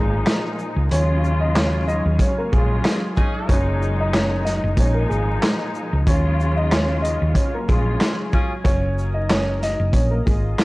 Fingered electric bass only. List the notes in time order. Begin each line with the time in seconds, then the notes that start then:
Already playing: G#1
0.76 C#2
0.91 D#2
2.06 D#2
2.53 A#1
3.49 F#1
4.64 F#1
4.77 A#1
5.11 G#1
5.93 C#2
6.07 D#2
7.22 D#2
7.69 A#1
8.65 F#1
9.80 F#1
9.93 A#1
10.27 G#1